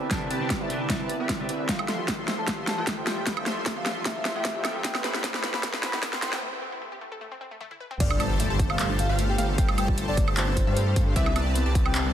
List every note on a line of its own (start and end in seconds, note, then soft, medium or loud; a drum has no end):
0.00 1.66 D3 medium
0.00 1.66 B3 medium
0.00 1.66 E4 medium
0.09 0.29 C2 loud
0.09 0.38 C3 medium
0.09 0.38 C4 medium
0.09 0.38 E4 medium
0.09 0.39 B4 medium
0.09 0.39 D5 medium
0.09 0.32 A5 medium
0.09 kick loud
0.09 snare medium
0.09 closed hi-hat medium
0.30 0.59 C2 medium
0.30 0.58 C4 medium
0.30 0.58 G4 medium
0.30 0.58 B4 medium
0.30 0.58 D5 medium
0.30 0.62 G5 loud
0.30 0.58 A5 loud
0.30 closed hi-hat medium
0.40 0.50 C3 medium
0.40 0.50 C4 medium
0.40 0.50 E4 medium
0.40 0.51 B4 medium
0.40 0.51 D5 medium
0.50 kick medium
0.50 snare medium
0.50 closed hi-hat medium
0.60 0.88 C2 loud
0.60 0.88 C4 medium
0.60 0.88 G4 medium
0.60 0.87 B4 medium
0.60 0.88 D5 medium
0.60 0.78 E5 loud
0.60 0.88 A5 medium
0.69 0.86 C3 medium
0.69 0.86 C4 medium
0.69 0.86 E4 medium
0.69 0.87 B4 medium
0.69 0.87 D5 loud
0.69 closed hi-hat medium
0.88 1.18 C2 loud
0.88 1.06 C3 loud
0.88 1.07 C4 medium
0.88 1.17 C4 medium
0.88 1.07 E4 medium
0.88 1.17 G4 medium
0.88 1.07 B4 medium
0.88 1.17 B4 medium
0.88 1.17 D5 medium
0.88 1.07 D5 loud
0.88 1.61 E5 medium
0.88 kick medium
0.88 snare medium
0.88 closed hi-hat medium
1.09 closed hi-hat medium
1.20 1.47 C2 medium
1.20 1.47 C4 medium
1.20 1.47 G4 medium
1.20 1.47 B4 medium
1.20 1.47 D5 medium
1.20 1.47 E5 medium
1.29 kick medium
1.29 snare medium
1.29 closed hi-hat medium
1.38 1.49 C3 medium
1.38 1.49 C4 medium
1.38 1.49 E4 medium
1.38 1.50 B4 medium
1.38 1.50 D5 medium
1.49 1.67 C2 medium
1.49 1.66 C4 medium
1.49 1.66 G4 medium
1.49 1.66 B4 medium
1.49 1.66 D5 medium
1.49 1.66 E5 medium
1.49 closed hi-hat medium
1.69 1.87 F1 loud
1.69 4.81 E3 medium
1.69 1.86 F3 medium
1.69 1.75 A3 loud
1.69 4.81 A3 medium
1.69 1.86 F4 medium
1.69 4.81 G4 medium
1.69 1.86 A4 medium
1.69 1.93 F5 loud
1.69 kick loud
1.69 snare medium
1.69 closed hi-hat medium
1.69 riser medium
1.79 1.81 E4 medium
1.79 high woodblock medium
1.88 2.17 F1 medium
1.88 2.16 F3 medium
1.88 1.93 A3 medium
1.88 2.16 F4 medium
1.88 2.16 A4 medium
1.88 2.16 E5 medium
1.88 2.16 C6 loud
1.88 snare medium
1.88 closed hi-hat medium
1.99 2.03 F4 medium
2.08 2.13 A3 medium
2.08 kick loud
2.08 snare medium
2.08 closed hi-hat medium
2.19 2.46 F1 medium
2.19 2.45 F3 medium
2.19 2.45 F4 medium
2.19 2.23 G4 medium
2.19 2.45 A4 medium
2.19 2.45 E5 medium
2.19 2.45 C6 medium
2.28 2.32 A3 medium
2.28 snare medium
2.28 closed hi-hat medium
2.38 2.44 A4 medium
2.38 2.56 A5 loud
2.48 2.76 F1 loud
2.48 2.75 F3 medium
2.48 2.54 A3 medium
2.48 2.75 F4 medium
2.48 2.75 A4 medium
2.48 2.75 E5 medium
2.48 2.75 C6 loud
2.48 kick loud
2.48 snare medium
2.48 closed hi-hat medium
2.58 2.60 E4 medium
2.67 2.74 A3 medium
2.67 2.85 A5 loud
2.67 snare medium
2.67 closed hi-hat medium
2.78 3.05 F1 medium
2.78 3.05 F3 medium
2.78 2.80 F4 loud
2.78 3.05 F4 medium
2.78 3.05 A4 medium
2.78 3.05 E5 medium
2.78 3.05 G5 medium
2.87 2.92 A3 loud
2.87 kick medium
2.87 snare medium
2.87 closed hi-hat medium
2.97 3.01 G4 medium
2.97 3.28 C6 medium
3.07 3.25 F1 loud
3.07 3.24 F3 medium
3.07 3.11 A3 medium
3.07 3.24 F4 medium
3.07 3.24 A4 medium
3.07 3.24 E5 medium
3.07 3.24 G5 medium
3.07 snare medium
3.07 closed hi-hat medium
3.17 3.23 A4 medium
3.26 3.44 F1 loud
3.26 3.44 F3 medium
3.26 3.33 A3 loud
3.26 3.44 F4 medium
3.26 3.44 G5 loud
3.26 3.39 B5 loud
3.26 kick loud
3.26 snare medium
3.26 closed hi-hat medium
3.37 3.39 E4 medium
3.37 high woodblock medium
3.46 3.74 F1 medium
3.46 3.74 F3 loud
3.46 3.51 A3 medium
3.46 3.74 F4 medium
3.46 3.74 A4 medium
3.46 3.74 E5 medium
3.46 3.74 C6 loud
3.46 3.64 C6 loud
3.46 snare medium
3.46 closed hi-hat medium
3.57 3.61 F4 medium
3.66 3.70 A3 medium
3.66 kick medium
3.66 snare medium
3.66 closed hi-hat medium
3.76 4.04 F1 loud
3.76 4.03 F3 medium
3.76 4.03 F4 medium
3.76 3.80 G4 medium
3.76 4.03 A4 medium
3.76 4.03 E5 medium
3.76 3.94 F5 loud
3.76 4.03 C6 loud
3.86 3.90 A3 medium
3.86 snare medium
3.86 closed hi-hat medium
3.96 4.02 A4 medium
4.05 4.34 F1 loud
4.05 4.33 F3 medium
4.05 4.12 A3 loud
4.05 4.33 F4 medium
4.05 4.33 A4 medium
4.05 4.77 E5 loud
4.05 4.33 E5 medium
4.05 4.33 C6 loud
4.05 kick loud
4.05 snare medium
4.05 closed hi-hat medium
4.16 4.18 E4 medium
4.25 4.32 A3 loud
4.25 snare medium
4.25 closed hi-hat medium
4.35 4.63 F2 medium
4.35 4.62 F3 medium
4.35 4.38 F4 loud
4.35 4.62 F4 medium
4.35 4.62 A4 medium
4.35 4.62 E5 medium
4.35 4.62 G5 medium
4.45 4.49 A3 loud
4.45 kick medium
4.45 snare medium
4.45 closed hi-hat medium
4.55 4.59 G4 medium
4.65 4.83 F2 medium
4.65 4.82 F3 medium
4.65 4.69 A3 medium
4.65 4.82 F4 medium
4.65 4.82 A4 medium
4.65 4.82 E5 medium
4.65 4.82 G5 medium
4.65 snare medium
4.65 closed hi-hat medium
4.65 high woodblock medium
4.75 4.81 A4 medium
4.84 5.02 A1 loud
4.84 6.41 C3 medium
4.84 4.91 A3 loud
4.84 5.02 A3 medium
4.84 6.41 B3 medium
4.84 5.02 E4 medium
4.84 6.41 G4 medium
4.84 5.09 G5 loud
4.84 kick loud
4.84 snare medium
4.84 closed hi-hat medium
4.95 4.97 C4 medium
4.95 snare medium
4.95 high woodblock medium
5.04 5.32 A1 medium
5.04 5.09 A3 medium
5.04 5.32 A3 loud
5.04 5.32 E4 medium
5.04 5.32 B4 medium
5.04 5.32 C5 medium
5.04 5.32 B5 loud
5.04 snare medium
5.04 closed hi-hat medium
5.14 5.18 E4 medium
5.14 snare medium
5.24 5.28 A3 medium
5.24 kick medium
5.24 snare loud
5.24 closed hi-hat medium
5.34 5.62 A1 medium
5.34 5.61 A3 medium
5.34 5.61 E4 medium
5.34 5.38 G4 medium
5.34 5.61 B4 medium
5.34 5.61 C5 medium
5.34 5.61 B5 loud
5.34 snare medium
5.43 5.48 A3 medium
5.43 snare loud
5.43 closed hi-hat medium
5.54 5.60 A4 medium
5.54 5.72 B5 loud
5.54 snare medium
5.63 5.91 A1 loud
5.63 5.70 A3 medium
5.63 5.91 A3 medium
5.63 5.91 B4 medium
5.63 5.91 C5 medium
5.63 kick loud
5.63 snare loud
5.63 closed hi-hat medium
5.74 5.76 C4 medium
5.74 snare medium
5.83 5.90 A3 loud
5.83 6.01 B5 medium
5.83 snare loud
5.83 closed hi-hat medium
5.93 6.21 A1 loud
5.93 6.20 A3 medium
5.93 5.96 E4 loud
5.93 6.20 E4 medium
5.93 6.20 B4 medium
5.93 6.20 C5 medium
5.93 6.20 G5 medium
5.93 snare medium
6.03 6.07 A3 loud
6.03 kick medium
6.03 snare loud
6.03 closed hi-hat medium
6.13 6.17 G4 medium
6.13 6.31 C6 medium
6.13 snare medium
6.22 6.40 A1 loud
6.22 6.27 A3 medium
6.22 6.40 A3 medium
6.22 6.40 E4 medium
6.22 6.40 B4 medium
6.22 6.40 C5 medium
6.22 6.40 G5 medium
6.22 snare loud
6.22 closed hi-hat medium
6.33 6.39 A4 medium
6.33 snare medium
6.42 6.49 A3 loud
6.53 6.55 C4 medium
6.62 6.67 A3 medium
6.72 6.76 E4 medium
6.82 6.86 A3 medium
6.92 6.96 G4 medium
7.01 7.06 A3 medium
7.12 7.18 A4 medium
7.21 7.28 A3 medium
7.32 7.34 C4 medium
7.41 7.44 C4 medium
7.51 7.55 A3 medium
7.61 7.65 A3 loud
7.61 high tom medium
7.71 7.74 E4 medium
7.71 high tom medium
7.80 7.83 B4 medium
7.91 7.93 C4 loud
7.91 mid tom medium
8.00 8.18 G1 loud
8.00 11.13 C3 medium
8.00 8.18 G3 medium
8.00 11.13 A3 medium
8.00 8.05 A3 medium
8.00 11.13 F4 medium
8.00 8.18 G4 medium
8.00 8.18 A4 medium
8.00 8.18 C5 medium
8.00 8.24 D5 loud
8.00 8.18 F5 loud
8.00 kick loud
8.00 closed hi-hat medium
8.00 crash loud
8.00 impact medium
8.11 8.13 D4 medium
8.11 high woodblock medium
8.20 8.48 G1 loud
8.20 8.48 G3 loud
8.20 8.24 A3 medium
8.20 8.48 G4 medium
8.20 8.48 A4 medium
8.20 8.48 C5 medium
8.20 8.48 A5 loud
8.20 closed hi-hat medium
8.20 high woodblock medium
8.30 8.33 F4 medium
8.40 8.46 A3 loud
8.40 closed hi-hat medium
8.50 8.77 G1 loud
8.50 8.77 G3 medium
8.50 8.54 G4 medium
8.50 8.77 G4 medium
8.50 8.77 A4 medium
8.50 8.77 C5 medium
8.50 8.77 A5 medium
8.50 8.77 A5 loud
8.59 8.66 A3 medium
8.59 kick loud
8.59 closed hi-hat medium
8.70 8.76 A4 medium
8.70 8.88 F5 loud
8.70 high woodblock medium
8.79 9.07 G1 loud
8.79 9.07 G3 medium
8.79 8.84 A3 medium
8.79 9.07 G4 medium
8.79 9.07 A4 medium
8.79 9.07 C5 medium
8.79 9.07 A5 loud
8.79 clap loud
8.79 closed hi-hat medium
8.90 8.94 D4 medium
8.99 9.03 A3 medium
8.99 9.17 F5 medium
8.99 closed hi-hat medium
9.09 9.37 G1 medium
9.09 9.36 G3 medium
9.09 9.15 F4 medium
9.09 9.36 G4 medium
9.09 9.36 A4 medium
9.09 9.36 C5 medium
9.09 9.36 F5 medium
9.19 9.25 A3 loud
9.19 closed hi-hat medium
9.29 9.32 G4 medium
9.29 9.47 G5 medium
9.38 9.56 G1 loud
9.38 9.56 G3 medium
9.38 9.45 A3 medium
9.38 9.56 G4 medium
9.38 9.56 A4 medium
9.38 9.56 C5 medium
9.38 9.56 F5 medium
9.38 closed hi-hat medium
9.49 9.55 A4 medium
9.58 9.76 G1 loud
9.58 9.76 G3 medium
9.58 9.63 A3 medium
9.58 9.76 G4 medium
9.58 9.76 A4 medium
9.58 9.76 C5 medium
9.58 9.76 F5 loud
9.58 9.71 G5 medium
9.58 kick loud
9.58 closed hi-hat medium
9.69 9.71 D4 medium
9.69 high woodblock medium
9.78 10.06 G1 loud
9.78 10.06 G3 loud
9.78 9.82 A3 medium
9.78 10.06 G4 medium
9.78 10.06 A4 medium
9.78 10.06 C5 medium
9.78 9.96 G5 loud
9.78 10.06 A5 loud
9.78 closed hi-hat medium
9.78 high woodblock medium
9.88 9.91 F4 medium
9.88 kick medium
9.98 10.04 A3 loud
9.98 closed hi-hat medium
10.08 10.35 G1 loud
10.08 10.35 G3 medium
10.08 10.12 G4 medium
10.08 10.35 G4 medium
10.08 10.35 A4 medium
10.08 10.35 C5 medium
10.08 10.26 D5 loud
10.08 10.35 A5 medium
10.08 10.35 A5 loud
10.17 10.24 A3 medium
10.17 kick loud
10.17 closed hi-hat medium
10.28 10.34 A4 medium
10.28 high woodblock medium
10.37 10.65 G1 loud
10.37 10.65 G3 medium
10.37 10.42 A3 medium
10.37 10.65 G4 medium
10.37 10.65 A4 medium
10.37 11.09 C5 loud
10.37 10.65 C5 medium
10.37 10.65 A5 loud
10.37 clap loud
10.37 closed hi-hat medium
10.48 10.52 D4 medium
10.57 10.61 A3 medium
10.57 kick medium
10.57 closed hi-hat medium
10.67 10.94 G2 medium
10.67 10.94 G3 medium
10.67 10.73 F4 medium
10.67 10.94 G4 medium
10.67 10.94 A4 medium
10.67 10.94 C5 medium
10.67 10.94 F5 medium
10.77 10.83 A3 loud
10.77 closed hi-hat medium
10.87 10.89 G4 medium
10.96 11.14 G2 medium
10.96 11.03 A3 medium
10.96 11.14 F5 medium
10.96 kick loud
10.96 closed hi-hat medium
11.07 11.13 A4 medium
11.16 11.34 C2 loud
11.16 12.13 D3 medium
11.16 11.20 B3 medium
11.16 12.13 B3 medium
11.16 11.34 C4 medium
11.16 12.13 E4 medium
11.16 11.34 G4 medium
11.16 11.34 B4 medium
11.16 11.34 D5 medium
11.16 11.40 E5 loud
11.16 11.34 E5 loud
11.16 kick loud
11.16 closed hi-hat medium
11.26 11.29 D4 medium
11.26 high woodblock medium
11.36 11.64 C2 loud
11.36 11.40 B3 medium
11.36 11.63 C4 loud
11.36 11.63 G4 medium
11.36 11.63 B4 medium
11.36 11.63 D5 medium
11.36 11.63 A5 loud
11.36 closed hi-hat medium
11.36 high woodblock medium
11.46 11.49 E4 medium
11.55 11.62 B3 loud
11.55 closed hi-hat medium
11.66 11.93 C2 loud
11.66 11.93 C4 medium
11.66 11.70 G4 medium
11.66 11.93 G4 medium
11.66 11.93 B4 medium
11.66 11.93 D5 medium
11.66 11.93 A5 loud
11.75 11.82 B3 medium
11.75 kick loud
11.75 closed hi-hat medium
11.86 11.92 B4 medium
11.86 12.03 G5 loud
11.86 high woodblock medium
11.95 12.13 C2 loud
11.95 11.99 B3 medium
11.95 12.13 C4 medium
11.95 12.13 G4 medium
11.95 12.13 B4 medium
11.95 12.13 D5 medium
11.95 12.13 A5 loud
11.95 clap loud
11.95 closed hi-hat medium
12.05 12.09 D4 medium